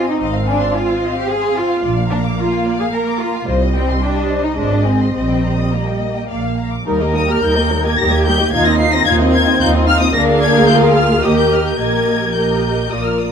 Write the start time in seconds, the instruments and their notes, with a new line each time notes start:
Already playing: viola section C4, violin section D#5
0.08 cello section D#4, violin section D#5
0.21 double bass section G#1, violin section D#5 F5
0.34 violin section F5
0.47 cello section D4, violin section G#5
0.61 violin section C6
0.74 cello section F4, violin section G#5
0.87 violin section F5
1.01 violin section D#5
1.14 cello section G4, violin section F5
1.29 cello section G#4, violin section G#5
1.43 violin section C6
1.56 cello section F4, violin section G#5
1.70 violin section F5
1.83 double bass section A#1, viola section A#3, violin section D5
1.98 violin section F5
2.11 cello section D4, violin section A#5
2.25 violin section D6
2.38 cello section F4, violin section A#5
2.53 violin section F5
2.66 violin section D5
2.80 cello section G#4, violin section F5
2.93 cello section A#4, violin section A#5
3.08 violin section D6
3.20 cello section F4, violin section A#5
3.35 violin section F5
3.46 double bass section C2, viola section G3, violin section C5 D#5
3.62 violin section D#5
3.74 cello section C4, violin section G5
3.90 violin section C6
4.01 cello section D4, violin section G5
4.16 violin section D#5
4.30 violin section C5
4.44 cello section D#4, violin section D#5
4.56 double bass section G#1, viola section G#3, cello section D4, violin section C5
4.72 violin section D#5
4.85 cello section C4, violin section G#5
5.00 violin section C6
5.14 double bass section A#1, viola section G3, cello section C4, violin section D#5
5.29 violin section G5
5.43 violin section A#5
5.58 violin section D#6
5.72 cello section A#3, violin section A#5
5.86 violin section G5
6.00 violin section D#5
6.14 violin section G5
6.29 double bass section A#1, viola section A#3, violin section D5 F5
6.43 violin section F5
6.57 violin section A#5
6.72 violin section D6
6.86 double bass section D#2, viola section G3 D#4, violin section A#4, cello section A#4
7.00 viola section A#3 G4, violin section G4 D#5
7.14 viola section G3 D#4, violin section A#4 D#6
7.28 viola section A#3 G4, violin section G4 D#5 F6
7.42 double bass section D#2, viola section G3 D#4, violin section A#4 G6
7.56 viola section A#3 G4, violin section G4 D#5
7.69 viola section G3 D#4, violin section A#4
7.83 viola section A#3 G4, violin section G4 D#5 G#6
7.96 double bass section D#2, viola section G3 D#4, cello section G4, violin section A#4 A#6
8.10 viola section A#3 G4, violin section G4 D#5 G#6
8.24 viola section G3 D#4, violin section A#4 G6
8.38 viola section A#3 G4, violin section G4 D#5
8.51 double bass section D#2, violin section D#4 F5 G#6, viola section D#4 F4, cello section D#4
8.65 viola section C4 D#4, violin section F4 D#5 A#6
8.78 violin section D#4 F5 C7, viola section D#4 F4
8.92 viola section C4 D#4, violin section F4 D#5 A#6
9.05 double bass section D#2, cello section C4, violin section D#4 F5 G#6, viola section D#4 F4
9.20 viola section C4 D#4, violin section F4 D#5
9.32 violin section D#4 F5 G#6, viola section D#4 F4
9.46 viola section C4 D#4, violin section F4 D#5
9.60 double bass section D#2, violin section D#4 F5 G6, viola section D#4 F4
9.74 viola section C4 D#4, violin section F4 D#5
9.87 violin section D#4 F5 F6, viola section D#4 F4
10.01 viola section C4 D#4, violin section F4 D#5 D#6
10.13 double bass section D2, viola section A#3 G#4, cello section D4, violin section A#4 F5 A#6
10.40 violin section G#6
10.67 cello section F4, violin section G6
10.94 violin section F6
11.23 double bass section D#2, viola section A#3 G4, cello section G4, violin section A#4 D#5 D#6
11.38 violin section G6
11.52 violin section F6
11.67 violin section G6
11.79 double bass section A#1, viola section A#3 G4, violin section A#4 D#5 G#6, cello section A#4
12.34 viola section A#3 G4, violin section A#4 D#5 G6
12.91 double bass section A#1, viola section A#3 F4, violin section A#4 D5 D#6
13.06 violin section F6
13.19 violin section D#6